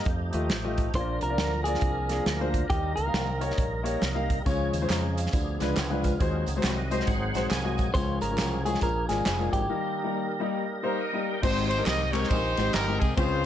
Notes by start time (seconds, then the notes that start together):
0.05 F2 F3 A3 D#4 G4, kick, closed hi-hat
0.33 D#2 A3 F4 G4 D#5, closed hi-hat
0.50 A1, snare, closed hi-hat
0.64 A3 F4 G4 D#5
0.78 kick, closed hi-hat
0.94 A#1 A#2 F3 A#3 D4 F4 G#4 C5 D5, kick, closed hi-hat
1.01 A#4
1.21 C2 A#4, closed hi-hat
1.29 A#3 D4 F4 D5
1.38 D2, snare, closed hi-hat
1.64 A#3 D4 F4 G#4 D5, closed hi-hat
1.74 snare
1.81 C2, kick, closed hi-hat
2.09 A#3 D4 F4 G#4, snare, closed hi-hat
2.26 D2, snare, closed hi-hat
2.40 A#3 D4 F4 C5
2.54 kick, closed hi-hat
2.70 D#2 D#3 F#3 A#3 D#4 G4 A#4 D#5, kick, closed hi-hat
2.76 G3
2.96 C#2 A#4, closed hi-hat
3.06 A#3 D#4 G4 F5
3.14 C2, snare, closed hi-hat
3.41 A#3 D#4 G4 C#5, closed hi-hat
3.50 snare
3.58 A#1, kick, closed hi-hat
3.83 A#3 D#4 G4 C#5, closed hi-hat
4.02 C2, snare, closed hi-hat
4.15 A#3 D#4 G4 F5
4.30 kick, closed hi-hat
4.45 C#2 C#3 F3 G#3 C#4 F4 G#4 C#5, kick, closed hi-hat, tambourine
4.73 D#2, closed hi-hat, tambourine
4.82 G#3 C#4 F4 C5
4.89 F2 A#5, snare, clap, closed hi-hat, tambourine
5.17 F5, closed hi-hat, tambourine
5.26 snare
5.32 D2 D3 F3 B3 D4 G#4, kick, closed hi-hat, tambourine
5.60 C#2 G#3 D4 F4 B4, snare, closed hi-hat, tambourine
5.76 C#2 B3 G#4, snare, clap, closed hi-hat, tambourine
5.90 G#3 D4 F4 B4
6.02 G#3 F4, kick, closed hi-hat, tambourine
6.19 D#2 D#3 F#3 G#3 B3 D#4 F#4 G#4 C5, kick, closed hi-hat, tambourine
6.25 C4
6.46 C#2, closed hi-hat, tambourine
6.56 G#3 D#4 F#4 C5
6.63 C2 F#4 D#5, snare, clap, closed hi-hat, tambourine
6.90 G#3 D#4 F#4 C5 D#5, closed hi-hat, tambourine
7.00 snare
7.05 G#1 G#2 F#3 C4 D#4 G#4 F#5, kick, closed hi-hat, tambourine
7.34 A#1 G#3 D#4 F#4 C5, snare, closed hi-hat, tambourine
7.49 C2 G#5, snare, clap, closed hi-hat, tambourine
7.64 G#3 D#4 F#4 D#5
7.78 A#1 F#5, kick, closed hi-hat, tambourine
7.94 C#2 C#3 F3 G#3 C#4 F4 G#4 C5 C#5, kick, closed hi-hat, tambourine
8.21 G#1 A#4, closed hi-hat, tambourine
8.30 G#3 C#4 F4 A#4
8.37 C2, snare, clap, closed hi-hat, tambourine
8.65 G#3 C#4 F4 G#4, closed hi-hat, tambourine
8.74 snare
8.81 A#1 A#2 F3 A#3 D4 G#4 A#4, kick, closed hi-hat, tambourine
9.09 G#1 G#3 D4 F4 G#4 A#4, snare, closed hi-hat, tambourine
9.26 F1, snare, clap, closed hi-hat, tambourine
9.38 G#3 D4 F4 A#4
9.53 G#1 G4, kick, closed hi-hat, tambourine
9.69 D#3 G3 A#3 D#4 A#4
10.04 G3 A#3 D#4 A#4
10.40 G3 A#3 D#4 G4
10.83 G3 A#3 D#4 G4 A#4 C5
11.01 D#5
11.13 G3 A#3 D#4 G4
11.28 G5
11.42 G#1 G#2 G#3 C4 D#4 G4 C5, kick, crash, tambourine
11.68 C5, ride, tambourine
11.78 G#3 C4 D#4 G4 A#4
11.84 C2 D#5, snare, clap, ride, tambourine
12.12 G#3 C4 D#4 G4 A#4 C#5, clap, ride, tambourine
12.23 snare
12.29 A#1 D#4 G4 C5, kick, ride, tambourine
12.57 G#1 G#3 C4 D#4 G4 C5, snare, ride, tambourine
12.73 G1 A#4, snare, clap, ride, tambourine
12.87 G#3 C4 D#4 G4 D#5
13.00 C2 G#4, kick, ride, tambourine
13.16 C#2 C#3 G#3 C4 C#4 F4 G#4 C5, kick, ride, tambourine